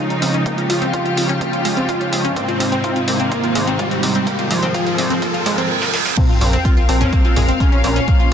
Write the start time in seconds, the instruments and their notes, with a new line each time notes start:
Already playing: string section C#3 F3 G#3 D#4 F4, riser
0.00 supersaw synth D#4
0.10 synth arpeggio sound C#4, closed hi-hat
0.22 analog synth bass C#2, synth arpeggio sound C4, mid tom, open hi-hat
0.34 synth arpeggio sound C#4, closed hi-hat
0.46 synth arpeggio sound A#3, string section G4, kick, closed hi-hat
0.58 synth arpeggio sound F4, closed hi-hat
0.70 analog synth bass C#2, synth arpeggio sound F4, supersaw synth F4, mid tom, open hi-hat
0.82 synth arpeggio sound C4, closed hi-hat
0.93 synth arpeggio sound F4, kick, closed hi-hat
1.05 synth arpeggio sound F4, closed hi-hat
1.17 analog synth bass C#2, synth arpeggio sound C4, open hi-hat
1.29 synth arpeggio sound C#4, closed hi-hat
1.41 synth arpeggio sound A#3, kick, closed hi-hat
1.53 synth arpeggio sound F4, closed hi-hat
1.65 analog synth bass C#2, synth arpeggio sound G#3, open hi-hat
1.77 synth arpeggio sound C4, closed hi-hat, mid tom
1.89 synth arpeggio sound F4, kick, closed hi-hat
2.01 synth arpeggio sound C#4, closed hi-hat
2.13 analog synth bass C#2, synth arpeggio sound C4, open hi-hat
2.25 synth arpeggio sound C#4, closed hi-hat, mid tom
2.36 string section G#2 C3 D#3 C4 D#4, synth arpeggio sound A#3, supersaw synth C4, kick, closed hi-hat
2.48 synth arpeggio sound F4, closed hi-hat
2.60 analog synth bass C2, synth arpeggio sound F4, mid tom, open hi-hat
2.72 synth arpeggio sound C4, closed hi-hat
2.84 synth arpeggio sound F4, kick, closed hi-hat
2.96 synth arpeggio sound F4, closed hi-hat
3.08 analog synth bass C2, supersaw synth A#3, synth arpeggio sound C4, open hi-hat
3.20 synth arpeggio sound C4, closed hi-hat
3.32 synth arpeggio sound A#3, kick, closed hi-hat
3.44 synth arpeggio sound F4, closed hi-hat
3.55 analog synth bass C2, synth arpeggio sound G#3, open hi-hat
3.67 synth arpeggio sound C4, closed hi-hat
3.79 supersaw synth G3, synth arpeggio sound F4, kick, closed hi-hat
3.91 synth arpeggio sound C4, closed hi-hat
4.03 analog synth bass C2, synth arpeggio sound C4, mid tom, open hi-hat
4.15 synth arpeggio sound C4, closed hi-hat
4.27 string section A#3, synth arpeggio sound A#3, kick, closed hi-hat
4.39 synth arpeggio sound F4, closed hi-hat
4.51 analog synth bass C2, supersaw synth F3, synth arpeggio sound F4, mid tom, open hi-hat
4.63 synth arpeggio sound C4, closed hi-hat
4.74 synth arpeggio sound F4, kick, closed hi-hat
4.87 synth arpeggio sound F4, closed hi-hat
4.98 analog synth bass C2, synth arpeggio sound C4, open hi-hat
5.10 synth arpeggio sound C4, closed hi-hat
5.22 synth arpeggio sound A#3, kick, closed hi-hat, reverse cymbal
5.34 synth arpeggio sound F4, closed hi-hat
5.46 analog synth bass A#1, synth arpeggio sound G#3, open hi-hat
5.58 synth arpeggio sound C4, closed hi-hat, mid tom
5.82 snare
5.94 snare
6.06 snare
6.17 synth drone A#2 A#3, synth arpeggio sound A#3, synth bell C4, supersaw synth C4, string section F4 A#4 F5, kick, closed hi-hat, crash, sub drop
6.29 synth arpeggio sound F4, closed hi-hat
6.41 analog synth bass A#1, synth arpeggio sound F4, open hi-hat
6.53 synth arpeggio sound C4, closed hi-hat
6.65 synth arpeggio sound F4, kick, closed hi-hat
6.77 synth arpeggio sound F4, closed hi-hat
6.89 analog synth bass A#1, synth bell C4, supersaw synth C4, synth arpeggio sound C4, open hi-hat
7.01 synth arpeggio sound C#4, closed hi-hat, mid tom
7.13 synth arpeggio sound A#3, kick, closed hi-hat
7.25 synth arpeggio sound F4, closed hi-hat
7.36 analog synth bass A#1, synth arpeggio sound G#3, mid tom, open hi-hat
7.49 synth arpeggio sound C4, closed hi-hat
7.60 synth bell C#4, supersaw synth C#4, synth arpeggio sound F4, kick, closed hi-hat
7.72 synth arpeggio sound C#4, closed hi-hat
7.84 analog synth bass A#1, synth arpeggio sound C4, open hi-hat
7.96 synth arpeggio sound C#4, closed hi-hat
8.08 synth arpeggio sound A#3, string section C5, kick, closed hi-hat
8.20 synth arpeggio sound F4, closed hi-hat